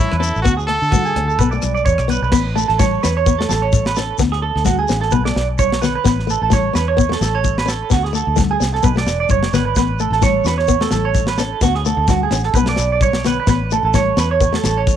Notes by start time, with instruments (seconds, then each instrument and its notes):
Already playing: trumpet E4, clean electric guitar C#5
0.11 fingered electric bass E2, clean electric guitar B4, cross-stick
0.18 steel-string acoustic guitar C#4, trumpet E4, clean electric guitar A4
0.23 closed hi-hat, shekere
0.36 fingered electric bass A1, shekere
0.42 fingered electric bass D2, steel-string acoustic guitar B3, trumpet F#4, clean electric guitar F#4, kick, cross-stick
0.46 shekere
0.57 clean electric guitar G#4, shekere
0.67 steel-string acoustic guitar A3, trumpet A4, clean electric guitar A4, closed hi-hat
0.82 fingered electric bass D3, shekere
0.91 steel-string acoustic guitar A3, clean electric guitar F#4, kick, cross-stick, high conga, shekere
1.05 clean electric guitar G#4, shekere
1.16 fingered electric bass D2, steel-string acoustic guitar C#4, cross-stick, closed hi-hat, muted conga, low conga
1.28 clean electric guitar A4, shekere
1.39 fingered electric bass B1, steel-string acoustic guitar B3, clean electric guitar B4, kick, muted conga, shekere
1.51 steel-string acoustic guitar A3, clean electric guitar D5, shekere
1.62 fingered electric bass B1, cross-stick, closed hi-hat, muted conga, high conga, shekere
1.75 clean electric guitar D5, shekere
1.85 fingered electric bass E2, clean electric guitar C#5, kick, shekere
1.98 fingered electric bass B1, cross-stick, shekere
2.08 steel-string acoustic guitar B3, clean electric guitar B4, closed hi-hat, high conga, low conga, shekere
2.22 fingered electric bass B1, clean electric guitar B4, shekere
2.32 fingered electric bass A1, steel-string acoustic guitar B3, clean electric guitar B4, kick, snare, crash, shekere
2.56 steel-string acoustic guitar A3, clean electric guitar A4, muted conga, shekere
2.68 fingered electric bass A1, clean electric guitar A4, snare
2.79 steel-string acoustic guitar A3, clean electric guitar C#5, kick, snare, high conga, shekere
3.03 fingered electric bass E2, steel-string acoustic guitar C#4, clean electric guitar B4, snare, muted conga, shekere
3.17 clean electric guitar C#5
3.26 steel-string acoustic guitar B3, kick, shekere
3.38 steel-string acoustic guitar A3, clean electric guitar A4, snare
3.49 fingered electric bass A1, clean electric guitar A4, snare, high conga, shekere
3.62 clean electric guitar C#5
3.73 kick, snare, high conga, shekere
3.86 clean electric guitar B4, snare
3.96 steel-string acoustic guitar C#4, clean electric guitar A4, snare, shekere
4.18 fingered electric bass D2, steel-string acoustic guitar B3, muted clean electric guitar stroke, kick, snare, shekere
4.32 clean electric guitar G#4, snare
4.42 clean electric guitar A4, muted conga
4.56 fingered electric bass D2, snare
4.65 steel-string acoustic guitar A3, clean electric guitar F#4, kick, snare, high conga, shekere
4.79 clean electric guitar G#4
4.88 fingered electric bass A1, steel-string acoustic guitar C#4, snare, muted conga, shekere
5.01 clean electric guitar A4, snare
5.11 fingered electric bass B1, steel-string acoustic guitar B3, clean electric guitar B4, kick, muted conga, high conga, shekere
5.25 steel-string acoustic guitar A3, clean electric guitar D5, snare
5.35 fingered electric bass B1, snare
5.59 clean electric guitar C#5, kick, high conga, shekere
5.72 snare
5.82 steel-string acoustic guitar B3, clean electric guitar B4, snare, low conga, shekere
5.95 clean electric guitar B4
6.04 fingered electric bass A1, steel-string acoustic guitar B3, clean electric guitar B4, kick, snare, shekere
6.19 snare
6.27 steel-string acoustic guitar A3, clean electric guitar A4, muted conga, shekere
6.42 fingered electric bass A1, clean electric guitar A4
6.50 steel-string acoustic guitar A3, clean electric guitar C#5, kick, snare, high conga, shekere
6.73 fingered electric bass E2, steel-string acoustic guitar C#4, clean electric guitar B4, snare, muted conga, shekere
6.88 clean electric guitar C#5
6.97 steel-string acoustic guitar B3, kick, shekere
7.09 steel-string acoustic guitar A3, clean electric guitar A4, snare
7.21 fingered electric bass A1, clean electric guitar A4, snare, high conga, shekere
7.35 clean electric guitar C#5
7.44 kick, high conga, shekere
7.58 clean electric guitar B4, snare
7.66 steel-string acoustic guitar C#4, clean electric guitar A4, snare, shekere
7.90 fingered electric bass D2, steel-string acoustic guitar B3, clean electric guitar F#4, kick, snare, shekere
8.04 clean electric guitar G#4, snare
8.13 steel-string acoustic guitar A3, clean electric guitar A4, shekere
8.27 fingered electric bass D2
8.36 steel-string acoustic guitar A3, muted clean electric guitar stroke, kick, snare, high conga, shekere
8.51 clean electric guitar G#4
8.59 fingered electric bass C2, steel-string acoustic guitar C#4, snare, muted conga, shekere
8.74 clean electric guitar A4, snare
8.83 fingered electric bass B1, steel-string acoustic guitar B3, clean electric guitar B4, kick, muted conga, high conga, shekere
8.96 steel-string acoustic guitar A3, clean electric guitar D5, snare
9.06 fingered electric bass E1, snare, shekere
9.20 clean electric guitar D5
9.29 fingered electric bass F#1, clean electric guitar C#5, kick, high conga, shekere
9.43 snare
9.52 fingered electric bass G#1, steel-string acoustic guitar B3, clean electric guitar B4, snare, low conga, shekere
9.65 clean electric guitar B4
9.76 fingered electric bass A1, steel-string acoustic guitar B3, clean electric guitar B4, kick, snare, shekere
9.98 steel-string acoustic guitar A3, clean electric guitar A4, muted conga, shekere
10.10 fingered electric bass A1, clean electric guitar A4, snare
10.22 steel-string acoustic guitar A3, clean electric guitar C#5, kick, snare, high conga, shekere
10.44 fingered electric bass E2, steel-string acoustic guitar C#4, clean electric guitar B4, snare, shekere
10.58 clean electric guitar C#5, snare
10.68 steel-string acoustic guitar B3, kick, shekere
10.81 steel-string acoustic guitar A3, clean electric guitar A4, snare
10.91 fingered electric bass A1, clean electric guitar A4, snare, high conga, shekere
11.05 clean electric guitar C#5
11.15 kick, snare, high conga, shekere
11.27 clean electric guitar B4, snare
11.38 steel-string acoustic guitar C#4, clean electric guitar A4, snare, shekere
11.61 fingered electric bass D2, steel-string acoustic guitar B3, clean electric guitar F#4, kick, snare, shekere
11.75 clean electric guitar G#4, snare
11.85 steel-string acoustic guitar A3, clean electric guitar A4, muted conga, shekere
11.97 fingered electric bass D2
12.08 steel-string acoustic guitar A3, clean electric guitar F#4, kick, snare, high conga, shekere
12.23 clean electric guitar G#4
12.31 fingered electric bass A1, steel-string acoustic guitar C#4, snare, shekere
12.43 clean electric guitar A4, snare
12.54 fingered electric bass B1, steel-string acoustic guitar B3, clean electric guitar B4, kick, muted conga, high conga, shekere
12.66 steel-string acoustic guitar A3, clean electric guitar D5, snare
12.76 fingered electric bass B1, snare, shekere
12.92 clean electric guitar D5
13.01 clean electric guitar C#5, kick, high conga, shekere
13.13 snare
13.25 steel-string acoustic guitar B3, clean electric guitar B4, snare, low conga, shekere
13.40 clean electric guitar B4
13.47 fingered electric bass A1, steel-string acoustic guitar B3, clean electric guitar B4, kick, snare, shekere
13.71 steel-string acoustic guitar A3, clean electric guitar A4, muted conga, shekere
13.83 fingered electric bass A1, clean electric guitar A4
13.94 steel-string acoustic guitar A3, clean electric guitar C#5, kick, snare, high conga, shekere
14.17 fingered electric bass E2, steel-string acoustic guitar C#4, clean electric guitar B4, snare, muted conga, shekere
14.31 clean electric guitar C#5
14.40 muted steel-string acoustic guitar stroke, kick, shekere
14.53 steel-string acoustic guitar A3, clean electric guitar A4, snare
14.64 fingered electric bass A1, clean electric guitar A4, snare, high conga, shekere
14.77 clean electric guitar C#5
14.87 kick, snare, high conga, shekere